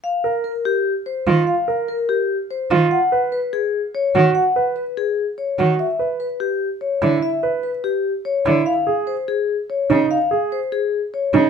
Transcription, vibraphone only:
0.04 0.30 F5 medium
0.44 0.71 A#4 soft
0.65 0.92 G4 medium
1.06 1.33 C5 medium
1.47 1.74 F5 medium
1.89 2.15 A#4 medium
2.09 2.36 G4 medium
2.51 2.77 C5 medium
2.91 3.18 F#5 medium
3.32 3.59 B4 medium
3.53 3.80 G#4 medium
3.95 4.21 C#5 medium
4.35 4.62 F#5 medium
4.76 5.03 B4 medium
4.97 5.24 G#4 medium
5.38 5.65 C#5 soft
5.79 6.06 E5 medium
6.20 6.47 B4 medium
6.40 6.67 G4 medium
6.81 7.08 C#5 soft
7.23 7.49 E5 medium
7.63 7.90 B4 medium
7.84 8.11 G4 medium
8.25 8.52 C#5 medium
8.66 8.93 F5 medium
9.07 9.34 C5 medium
9.28 9.55 G#4 medium
9.70 9.96 C#5 medium
10.11 10.37 F5 medium
10.52 10.78 C5 medium
10.72 10.99 G#4 medium
11.14 11.40 C#5 medium

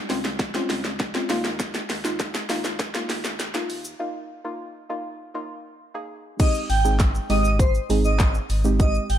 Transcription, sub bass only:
0.10 0.59 C#2 medium
0.70 1.19 C#2 loud
1.30 1.79 D#2 medium
1.90 2.39 D#2 loud
2.50 2.99 D#2 medium
3.10 3.59 D#2 loud
3.70 3.94 D#2 medium
6.70 7.19 G#1 loud
7.30 7.79 G#1 medium
7.90 8.39 G#1 loud
8.50 8.99 G#1 loud
9.10 9.18 G#1 loud

